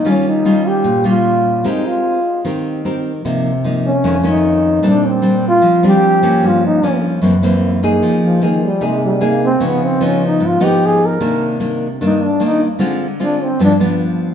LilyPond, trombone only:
\new Staff \with { instrumentName = "Trombone" } { \time 4/4 \key c \minor \tempo 4 = 150 des'8 ees'4 g'4 f'4. | ees'8 f'4. r2 | r4. des'4 ees'4. | d'8 c'4 f'4 g'4. |
f'8 ees'4 r2 r8 | r8 f8 ees8 g8 aes8 g8 bes8 c'8 | ces'8 c'8 des'8 ees'8 f'8 g'8 aes'8 bes'8~ | bes'4 r4 ees'8 d'8 ees'8 r8 |
r4 d'8 c'8 d'8 r4. | }